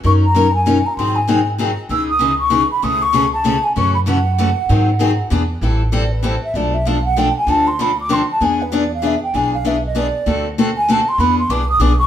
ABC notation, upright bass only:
X:1
M:3/4
L:1/8
Q:"Swing" 1/4=194
K:C#m
V:1 name="Upright bass" clef=bass
F,,6 | G,,6 | C,,6 | C,,6 |
F,,6 | G,,4 E,,2 | [K:Am] A,,,6 | B,,,6 |
D,,6 | E,,6 | B,,,6 | D,,6 |
E,,2 C,,2 B,,,2 |]